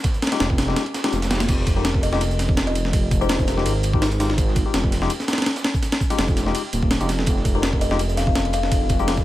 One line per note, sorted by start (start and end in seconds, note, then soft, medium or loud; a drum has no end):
0.04 kick loud
0.04 snare loud
0.04 closed hi-hat medium
0.04 ride medium
0.14 closed hi-hat soft
0.22 snare medium
0.22 closed hi-hat medium
0.22 ride medium
0.27 snare medium
0.27 ride medium
0.32 0.47 G#3 medium
0.32 0.47 D#4 medium
0.32 0.47 F4 medium
0.32 0.47 G4 loud
0.32 snare loud
0.32 ride medium
0.40 0.75 F1 medium
0.40 snare loud
0.40 closed hi-hat medium
0.40 ride medium
0.50 kick loud
0.58 snare loud
0.58 closed hi-hat medium
0.58 ride medium
0.68 0.83 G#3 medium
0.68 0.83 D#4 medium
0.68 0.83 F4 medium
0.68 0.83 G4 loud
0.68 snare soft
0.76 snare loud
0.76 closed hi-hat medium
0.76 ride medium
0.86 ride soft
0.94 snare loud
0.94 snare soft
0.94 closed hi-hat medium
0.94 ride medium
1.04 1.19 G#3 medium
1.04 1.19 D#4 medium
1.04 1.19 F4 medium
1.04 1.19 G4 medium
1.04 snare loud
1.04 ride medium
1.12 1.47 F1 loud
1.12 snare loud
1.12 closed hi-hat medium
1.12 ride soft
1.22 snare loud
1.22 snare soft
1.22 closed hi-hat medium
1.22 ride medium
1.30 1.41 G#3 medium
1.30 1.41 D#4 medium
1.30 1.41 F4 medium
1.30 1.41 G4 medium
1.30 snare loud
1.30 snare medium
1.30 closed hi-hat medium
1.30 ride medium
1.40 snare loud
1.40 closed hi-hat medium
1.40 ride medium
1.49 3.28 F1 loud
1.49 kick loud
1.49 closed hi-hat medium
1.49 crash medium
1.49 ride medium
1.58 snare soft
1.67 kick loud
1.67 closed hi-hat medium
1.67 ride medium
1.76 1.91 G#3 medium
1.76 1.91 D#4 medium
1.76 1.91 F4 medium
1.76 1.91 G4 medium
1.76 1.98 A#4 medium
1.84 snare loud
1.84 closed hi-hat medium
1.84 ride medium
1.95 kick loud
2.03 2.09 D#5 medium
2.03 closed hi-hat medium
2.03 ride medium
2.13 2.21 G#3 loud
2.13 2.21 D#4 medium
2.13 2.21 F4 medium
2.13 2.21 G4 loud
2.13 2.18 D#5 medium
2.13 snare medium
2.21 closed hi-hat medium
2.21 ride medium
2.31 closed hi-hat soft
2.39 snare soft
2.39 closed hi-hat medium
2.39 ride medium
2.49 kick loud
2.57 snare loud
2.57 closed hi-hat medium
2.57 ride medium
2.67 2.88 D#5 medium
2.67 ride soft
2.75 closed hi-hat medium
2.75 ride medium
2.85 snare soft
2.93 kick loud
2.93 closed hi-hat medium
2.93 ride medium
3.11 kick loud
3.11 closed hi-hat medium
3.11 ride medium
3.21 3.36 G#3 medium
3.21 3.36 D#4 medium
3.21 3.36 F4 medium
3.21 3.36 G4 loud
3.21 3.43 C5 medium
3.21 closed hi-hat soft
3.29 3.64 F1 medium
3.29 snare loud
3.29 closed hi-hat loud
3.29 ride medium
3.39 kick loud
3.39 closed hi-hat soft
3.47 3.98 A#4 medium
3.47 snare medium
3.47 closed hi-hat medium
3.47 ride medium
3.57 3.72 G#3 medium
3.57 3.72 D#4 medium
3.57 3.72 F4 medium
3.57 3.72 G4 loud
3.57 snare soft
3.65 4.64 G#1 loud
3.65 closed hi-hat medium
3.65 ride medium
3.83 closed hi-hat medium
3.83 ride medium
3.93 4.08 G#3 medium
3.93 4.08 D#4 medium
3.93 4.08 F4 medium
3.93 4.08 G4 medium
3.93 kick loud
4.02 snare loud
4.02 closed hi-hat medium
4.02 ride medium
4.11 closed hi-hat soft
4.11 ride soft
4.20 4.30 G#3 medium
4.20 4.30 D#4 medium
4.20 4.30 F4 medium
4.20 4.30 G4 medium
4.20 snare soft
4.20 closed hi-hat medium
4.20 ride medium
4.30 snare medium
4.38 kick loud
4.38 closed hi-hat loud
4.38 ride medium
4.48 snare soft
4.56 kick loud
4.56 closed hi-hat medium
4.56 ride medium
4.66 4.81 G#3 medium
4.66 4.81 D#4 medium
4.66 4.81 F4 medium
4.66 4.81 G4 medium
4.74 5.09 F1 medium
4.74 snare loud
4.74 closed hi-hat loud
4.74 ride medium
4.84 kick medium
4.92 snare soft
4.92 closed hi-hat medium
4.92 ride medium
5.02 5.11 G#3 loud
5.02 5.11 D#4 medium
5.02 5.11 F4 medium
5.02 5.11 G4 loud
5.02 snare medium
5.10 closed hi-hat medium
5.10 ride medium
5.20 snare soft
5.20 closed hi-hat soft
5.28 snare loud
5.28 snare medium
5.28 closed hi-hat medium
5.28 ride medium
5.33 snare medium
5.33 ride medium
5.38 snare medium
5.38 ride medium
5.42 snare medium
5.42 closed hi-hat medium
5.42 ride medium
5.46 snare loud
5.46 ride medium
5.56 snare medium
5.56 closed hi-hat medium
5.56 ride soft
5.64 snare loud
5.64 ride medium
5.74 kick medium
5.74 closed hi-hat medium
5.82 snare soft
5.82 closed hi-hat medium
5.82 ride medium
5.92 snare loud
5.92 ride medium
6.01 kick medium
6.01 closed hi-hat medium
6.10 6.25 G#3 medium
6.10 6.25 D#4 medium
6.10 6.25 F4 medium
6.10 6.25 G4 loud
6.10 snare soft
6.10 closed hi-hat soft
6.10 ride medium
6.18 6.53 F1 medium
6.18 snare loud
6.18 closed hi-hat loud
6.18 ride medium
6.28 kick loud
6.28 closed hi-hat soft
6.37 snare medium
6.37 closed hi-hat medium
6.37 ride medium
6.46 6.61 G#3 medium
6.46 6.61 D#4 medium
6.46 6.61 F4 medium
6.46 6.61 G4 loud
6.46 snare soft
6.55 closed hi-hat medium
6.55 ride medium
6.73 6.99 D#1 loud
6.73 closed hi-hat medium
6.73 ride medium
6.83 kick loud
6.91 snare loud
6.91 closed hi-hat medium
6.91 ride medium
7.01 7.26 F1 medium
7.01 7.09 G#3 medium
7.01 7.09 D#4 medium
7.01 7.09 F4 medium
7.01 7.09 G4 loud
7.01 closed hi-hat soft
7.01 ride soft
7.09 snare soft
7.09 closed hi-hat medium
7.09 ride medium
7.19 snare medium
7.26 9.06 F1 loud
7.26 kick loud
7.26 closed hi-hat loud
7.26 ride medium
7.36 snare soft
7.45 kick loud
7.45 closed hi-hat medium
7.45 ride medium
7.55 7.70 G#3 medium
7.55 7.70 D#4 medium
7.55 7.70 F4 medium
7.55 7.70 G4 medium
7.55 7.76 A#4 medium
7.62 snare loud
7.62 closed hi-hat medium
7.62 ride medium
7.73 kick loud
7.81 7.87 D#5 medium
7.81 closed hi-hat medium
7.81 ride medium
7.91 8.00 G#3 medium
7.91 8.00 D#4 medium
7.91 8.00 F4 medium
7.91 8.00 G4 loud
7.91 7.96 D#5 medium
7.91 snare medium
7.99 closed hi-hat medium
7.99 ride medium
8.09 closed hi-hat soft
8.17 8.24 F5 medium
8.17 snare soft
8.17 closed hi-hat medium
8.17 ride medium
8.27 8.32 F5 medium
8.27 kick loud
8.35 snare loud
8.35 closed hi-hat medium
8.35 ride medium
8.45 ride soft
8.53 8.76 F5 medium
8.53 closed hi-hat medium
8.53 ride medium
8.63 snare soft
8.72 kick loud
8.72 closed hi-hat medium
8.72 ride medium
8.89 kick loud
8.89 closed hi-hat medium
8.89 ride medium
8.99 9.14 G#3 medium
8.99 9.14 D#4 medium
8.99 9.14 F4 medium
8.99 9.14 G4 loud
8.99 closed hi-hat soft
9.08 9.24 F1 medium
9.08 snare loud
9.08 closed hi-hat medium
9.08 ride medium
9.17 kick medium
9.17 closed hi-hat soft